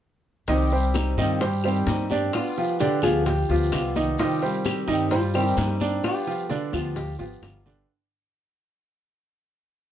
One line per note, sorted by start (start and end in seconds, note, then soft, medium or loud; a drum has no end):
0.48 1.14 C2 medium
0.48 1.17 C3 medium
0.48 0.67 D#3 medium
0.48 1.17 D#3 medium
0.48 1.20 G3 medium
0.48 0.91 C4 medium
0.48 1.18 C4 medium
0.48 0.67 D#4 medium
0.48 1.17 G4 medium
0.48 0.68 D#5 medium
0.48 high bongo medium
0.48 high conga soft
0.48 long guiro medium
0.48 maracas medium
0.72 1.10 G3 medium
0.72 1.10 G4 medium
0.72 1.10 C5 medium
0.72 high conga soft
0.94 1.16 D#4 medium
0.94 high bongo medium
0.94 high conga medium
0.94 short guiro medium
0.94 claves medium
0.94 maracas medium
1.17 1.83 G2 medium
1.17 1.37 D#3 medium
1.17 1.41 D#3 medium
1.17 1.41 G3 medium
1.17 1.41 C4 medium
1.17 1.37 D#4 medium
1.17 1.40 F4 medium
1.17 1.40 G4 medium
1.17 1.37 D#5 medium
1.17 high bongo soft
1.17 high conga soft
1.17 short guiro medium
1.17 maracas soft
1.41 1.60 G3 medium
1.41 1.89 G4 medium
1.41 1.60 G4 medium
1.41 1.60 C5 medium
1.41 muted steel-string acoustic guitar stroke medium
1.41 high bongo medium
1.41 high conga soft
1.41 long guiro medium
1.41 maracas medium
1.64 1.86 D#3 medium
1.64 2.02 G3 medium
1.64 1.87 G3 medium
1.64 1.87 C4 medium
1.64 1.86 G4 medium
1.64 2.03 G4 medium
1.64 2.03 C5 medium
1.64 high bongo soft
1.64 high conga soft
1.64 claves medium
1.87 2.28 G2 medium
1.87 2.33 D#3 soft
1.87 2.32 G3 soft
1.87 2.33 C4 soft
1.87 2.11 D#4 medium
1.87 2.34 G4 soft
1.87 high bongo medium
1.87 low bongo medium
1.87 high conga medium
1.87 short guiro medium
1.87 maracas medium
2.10 2.49 D4 medium
2.10 2.34 G4 medium
2.10 2.49 D5 medium
2.10 high bongo soft
2.10 high conga medium
2.10 short guiro medium
2.10 maracas soft
2.33 3.06 G3 medium
2.33 3.03 B3 medium
2.33 2.80 F4 loud
2.33 3.01 F4 medium
2.33 high bongo medium
2.33 high conga soft
2.33 long guiro medium
2.33 claves medium
2.33 maracas medium
2.57 2.76 F3 medium
2.57 2.76 F4 medium
2.57 2.77 G4 medium
2.57 high conga soft
2.79 2.99 D3 medium
2.79 2.99 D4 medium
2.79 3.02 G4 loud
2.79 3.00 D5 medium
2.79 high bongo medium
2.79 high conga medium
2.79 short guiro medium
2.79 maracas medium
3.02 3.46 D2 medium
3.02 3.41 F3 medium
3.02 3.26 B3 medium
3.02 3.25 F4 medium
3.02 3.42 F4 medium
3.02 3.42 G4 medium
3.02 3.26 G#4 medium
3.02 high bongo soft
3.02 high conga soft
3.02 short guiro medium
3.02 claves medium
3.02 maracas soft
3.26 4.19 G4 medium
3.26 muted steel-string acoustic guitar stroke medium
3.26 high bongo medium
3.26 high conga soft
3.26 long guiro medium
3.26 maracas medium
3.49 3.71 D2 medium
3.49 3.88 F3 medium
3.49 3.73 B3 medium
3.49 3.71 F4 medium
3.49 3.88 F4 medium
3.49 3.88 G4 medium
3.49 high bongo soft
3.49 high conga soft
3.49 maracas medium
3.72 4.13 C2 medium
3.72 4.18 G3 soft
3.72 4.19 B3 soft
3.72 4.19 F4 medium
3.72 high bongo medium
3.72 low bongo medium
3.72 high conga soft
3.72 short guiro medium
3.72 claves medium
3.72 maracas medium
3.95 4.15 D#3 medium
3.95 4.15 D#4 medium
3.95 4.15 D#5 medium
3.95 high bongo soft
3.95 high conga medium
3.95 short guiro medium
3.95 maracas soft
4.18 4.87 C3 medium
4.18 4.88 D#3 medium
4.18 4.38 D#3 medium
4.18 4.88 G3 medium
4.18 4.87 C4 medium
4.18 4.38 D#4 medium
4.18 4.65 F4 medium
4.18 4.87 G4 medium
4.18 4.38 D#5 medium
4.18 high bongo medium
4.18 high conga soft
4.18 long guiro medium
4.18 maracas medium
4.42 4.80 G3 medium
4.42 4.80 G4 medium
4.42 4.80 C5 medium
4.42 high conga soft
4.65 5.11 G4 medium
4.65 high bongo medium
4.65 high conga medium
4.65 short guiro medium
4.65 claves medium
4.65 maracas medium
4.87 5.53 G2 medium
4.87 5.07 D#3 medium
4.87 5.11 D#3 medium
4.87 5.11 G3 medium
4.87 5.11 C4 medium
4.87 5.07 D#4 medium
4.87 5.10 G4 medium
4.87 5.07 D#5 medium
4.87 high bongo soft
4.87 high conga soft
4.87 short guiro medium
4.87 maracas soft
5.11 5.30 G3 medium
5.11 5.54 F4 medium
5.11 5.31 G4 medium
5.11 5.31 C5 medium
5.11 muted steel-string acoustic guitar stroke medium
5.11 high bongo medium
5.11 high conga soft
5.11 long guiro medium
5.11 maracas medium
5.34 5.56 D#3 medium
5.34 5.72 G3 medium
5.34 5.57 G3 medium
5.34 5.57 C4 medium
5.34 5.56 G4 medium
5.34 5.73 G4 medium
5.34 5.73 C5 medium
5.34 high bongo soft
5.34 high conga soft
5.34 claves medium
5.34 maracas medium
5.57 5.98 G2 medium
5.57 6.03 D#3 soft
5.57 6.02 G3 soft
5.57 6.04 C4 soft
5.57 6.01 D#4 medium
5.57 6.04 G4 medium
5.57 high bongo medium
5.57 low bongo medium
5.57 high conga medium
5.57 short guiro medium
5.57 maracas medium
5.80 6.19 D4 medium
5.80 6.19 D5 medium
5.80 high bongo soft
5.80 high conga medium
5.80 short guiro medium
5.80 maracas soft
6.03 6.72 G3 medium
6.03 6.73 B3 medium
6.03 6.71 F4 medium
6.03 6.49 G4 loud
6.03 high bongo medium
6.03 high conga soft
6.03 long guiro medium
6.03 claves medium
6.03 maracas medium
6.27 6.46 F3 medium
6.27 6.46 F4 medium
6.27 6.46 G4 medium
6.27 high conga soft
6.27 maracas medium
6.49 6.69 D3 medium
6.49 6.69 D4 medium
6.49 6.56 F4 medium
6.49 6.69 D5 medium
6.49 high bongo medium
6.49 high conga medium
6.49 short guiro medium
6.49 maracas medium
6.72 7.16 D2 medium
6.72 7.11 F3 medium
6.72 6.96 B3 soft
6.72 6.95 F4 medium
6.72 6.96 F4 medium
6.72 7.11 F4 medium
6.72 7.11 G4 medium
6.72 high bongo soft
6.72 high conga soft
6.72 short guiro medium
6.72 claves medium
6.72 maracas soft
6.96 7.18 G4 medium
6.96 muted steel-string acoustic guitar stroke medium
6.96 high bongo medium
6.96 high conga soft
6.96 long guiro medium
6.96 maracas medium
7.19 7.41 G#1 medium
7.19 7.57 F3 medium
7.19 7.42 B3 medium
7.19 7.25 F4 medium
7.19 7.42 F4 medium
7.19 7.57 F4 medium
7.19 7.58 G4 medium
7.19 high bongo soft
7.19 high conga soft
7.19 maracas medium
7.42 7.83 G1 medium
7.42 7.88 G3 soft
7.42 7.89 B3 soft
7.42 7.66 F4 medium
7.42 7.89 F4 soft
7.42 high bongo medium
7.42 low bongo medium
7.42 high conga soft
7.42 short guiro medium
7.42 claves medium
7.42 maracas medium
7.66 7.85 D3 medium
7.66 7.85 D4 medium
7.66 7.88 G4 medium
7.66 7.85 D5 medium
7.66 high bongo soft
7.66 high conga medium
7.66 short guiro medium
7.66 maracas soft